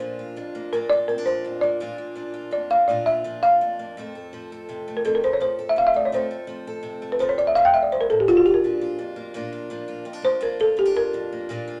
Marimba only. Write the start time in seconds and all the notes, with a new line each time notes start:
0.73 A#4
0.90 D5
1.08 A#4
1.26 C5
1.61 D5
2.53 D5
2.71 F5
2.88 D5
3.06 E5
3.43 F5
4.97 A#4
5.06 A4
5.15 A#4
5.24 C5
5.33 C#5
5.42 C5
5.69 E5
5.78 F5
5.87 E5
5.96 D5
6.05 C#5
6.14 C5
7.12 B4
7.20 C5
7.29 C#5
7.38 D5
7.47 E5
7.55 F5
7.65 G5
7.74 E5
7.83 D5
7.92 C5
8.01 A#4
8.10 A4
8.20 G4
8.28 F4
8.37 F#4
8.46 G4
8.54 A#4
10.25 C5
10.43 A#4
10.61 A4
10.79 G4
10.97 A#4